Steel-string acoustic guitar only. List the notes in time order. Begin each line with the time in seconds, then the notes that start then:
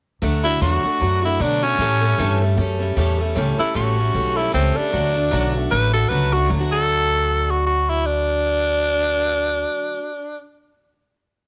0.22 D3 F#3 A3 D4 F#4
0.44 A3 D4 F#4
0.60 D3 F#3 A3 D4 F#4
0.84 A3 D4 F#4
1.00 F#3 A3 D4 F#4
1.22 A3 D4 F#4
1.40 D3 F#3 A3 D4 F#4
1.62 A3 D4 F#4
1.79 A2 E3 G3 A3 C#4 A4
2.01 G3 A3 C#4 A4
2.18 A2 E3 G3 A3 C#4 A4
2.40 G3 A3 C#4 A4
2.57 G3 A3 C#4 A4
2.79 G3 A3 C#4 A4
2.97 A2 E3 G3 A3 C#4 A4
3.18 G3 A3 C#4 A4
3.35 A2 E3 G3 A3 C#4 A4
3.58 G3 A3 C#4 A4
3.74 A2 E3 G3 A3 C#4 A4
3.97 G3 A3 C#4 A4
4.14 G3 A3 C#4 A4
4.36 G3 A3 C#4 A4
4.52 A2 E3 G3 A3 C#4 A4
4.75 G3 A3 C#4 A4
4.91 D3 F#3 A3 D4 F#4
5.13 A3 D4 F#4
5.31 D3 F#3 A3 D4 F#4
5.54 A3 D4 F#4
5.70 F#3 A3 D4 F#4
5.93 A3 D4 F#4
6.10 D3 F#3 A3 D4 F#4
6.33 A3 D4 F#4
6.45 D3
6.50 F#3
6.54 A3 D4
6.60 F#4